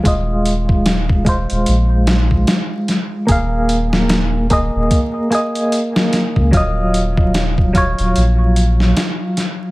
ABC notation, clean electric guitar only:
X:1
M:4/4
L:1/8
Q:"Swing 16ths" 1/4=74
K:Ebdor
V:1 name="Clean electric guitar"
[A,Fe]3 [A,Fc]4- [A,Fc] | [B,Af]3 [B,Ae]2 [B,Ae]3 | [G,Fe]3 [G,Fd]4- [G,Fd] |]